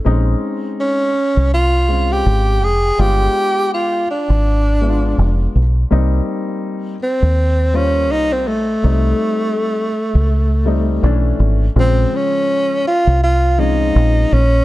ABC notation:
X:1
M:4/4
L:1/16
Q:"Swing 16ths" 1/4=82
K:Bbdor
V:1 name="Tenor saxophone"
z4 D4 F3 G3 A2 | G4 F2 =D8 z2 | z6 C4 D2 E C =A,2- | =A,12- A,2 z2 |
C2 D4 F2 F2 E4 D2 |]
V:2 name="Grand piano"
[A,CDE]6 z4 [A,CDF]4 z2 | [A,=B,=DF]6 z4 [A,B,D=EF]4 z2 | [G,B,CE]6 z4 [G,B,Fc]4 z2 | [G,=A,CE]6 z4 [G,A,CE]2 [=E,A,^C=D]4 |
[D,F,A,c]6 z4 [F,A,CD]4 z2 |]
V:3 name="Fingered electric bass" clef=bass
B,,,2 z4 z C,,4- C,, A,,,2 F,,,2 | G,,,2 z4 z A,,,4- A,,, F,,,2 =B,,,2 | C,,2 z4 z E,,4- E,, C,,2 B,,,2 | C,,2 z4 z D,,4- D,, =B,,,2 A,,,2 |
B,,,2 z4 z C,,4- C,, B,,,2 B,,,2 |]